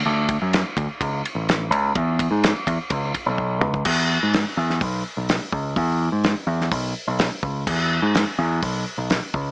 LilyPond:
<<
  \new Staff \with { instrumentName = "Picked electric bass" } { \clef bass \time 4/4 \key e \mixolydian \tempo 4 = 126 d,8. fis,8 r16 d,16 r16 cis,8 r16 a,,8. cis,8 | e,8. gis,8 r16 e,16 r16 cis,8 r16 b,,8. cis,8 | e,8. gis,8 r16 e,8 b,,8 r16 b,,8 r16 cis,8 | e,8. gis,8 r16 e,8 b,,8 r16 b,,8 r16 cis,8 |
e,8. gis,8 r16 e,8 b,,8 r16 b,,8 r16 cis,8 | }
  \new DrumStaff \with { instrumentName = "Drums" } \drummode { \time 4/4 r8 <bd cymr>8 <cymr sn>8 <bd cymr>8 <bd cymr>8 cymr8 <cymr sn>8 cymr8 | <bd cymr>8 <bd cymr>8 <cymr sn>8 <bd cymr>8 <bd cymr>8 <bd cymr>8 bd8 toml16 bd16 | <cymc bd>4 <hho sn>8. sn16 <hho bd>4 <hho sn>8 bd8 | <hho bd>4 <hho sn>8. sn16 <hho bd>4 <hho sn>8 bd8 |
<cymc bd>4 <hho sn>4 <hho bd>4 <hho sn>8 bd8 | }
>>